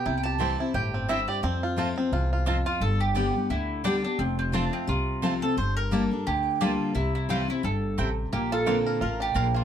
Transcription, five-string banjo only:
X:1
M:4/4
L:1/8
Q:"Swing" 1/4=174
K:F
V:1 name="Five-string banjo"
E G C E G C E G | C F F C F F F F | z8 | z8 |
z8 | z8 | B, F B, B F D B B, |]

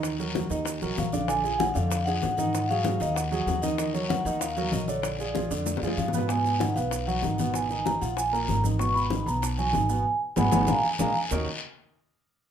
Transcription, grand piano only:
X:1
M:4/4
L:1/8
Q:1/4=192
K:Ebm
V:1 name="Grand piano"
[E,Ee] [G,GB] [G,GB] [E,Ee]2 [G,GB]2 [=D,=D=d] | [=D,=D=d] [F,FA]2 [D,Dd]2 [F,DA]2 [E,Ee]- | [E,Ee] [G,GA] [G,GA] [E,Ee]2 [G,GA]2 [E,Ee] | [E,Ee] [G,GB]2 [E,Ee]2 [G,GB]2 [=D,=D=d]- |
[=D,=D=d] [F,FA] [F,FA] [D,Dd]2 [F,FA]2 [C,Cc] | [C,C]2 [E,E] [Cc]2 [^F,^F] [^D,^D] [=B,,=B,]- | [=B,,=B,] [E,E]2 [F,F]2 [_B,,_B,]2 [E,E] | [C,C]2 [E,E] [Cc]2 [^F,^F] [^D,^D] [=B,,=B,] |
z2 [G,A,C] [G,A,C] [A,B,=D] z [A,B,D] z | [E,B,DEGB] z6 z |]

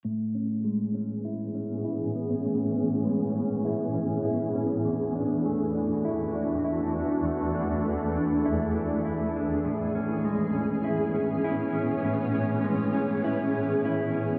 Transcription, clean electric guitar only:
X:1
M:4/4
L:1/16
Q:1/4=100
K:A
V:1 name="Clean electric guitar"
A,,2 C2 G,2 C2 E2 C2 E2 B, C | A,,2 C2 G,2 C2 E2 C2 E2 C2 | E,,2 D2 A,2 D2 E2 D2 E2 D2 | E,,2 D2 A,2 D2 E2 D2 E2 D2 |
A,,2 C2 G,2 C2 E2 C2 E2 C2 | A,,2 C2 G,2 C2 E2 C2 E2 C2 |]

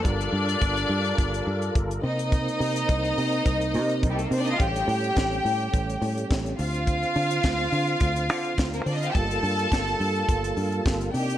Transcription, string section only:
X:1
M:4/4
L:1/16
Q:1/4=106
K:Gm
V:1 name="String section"
[Dd]12 z2 [Ee]2- | [Ee]12 z/2 [G,G]/2 [A,A]/2 [B,B]/2 [Cc]/2 [Dd]/2 [Ee]/2 [Ff]/2 | [Gg]12 z2 [Ff]2- | [Ff]12- [Ff]/2 z/2 [B,B]/2 [Cc]/2 [Dd]/2 [Ee]/2 [Ff]/2 [Gg]/2 |
[Aa]12 z2 [Gg]2 |]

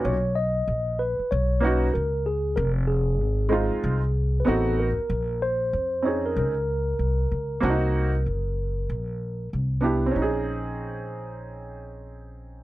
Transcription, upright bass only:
X:1
M:4/4
L:1/16
Q:"Swing 16ths" 1/4=95
K:Bbm
V:1 name="Upright bass" clef=bass
=B,,,4 ^A,,,3 z B,,,4 ^C,,4 | F,,,4 A,,,3 z C,,4 =A,,,3 z | B,,,4 F,,4 D,,4 C,,2 D,,2 | C,,4 G,,,4 B,,,4 C,,4 |
B,,,16 |]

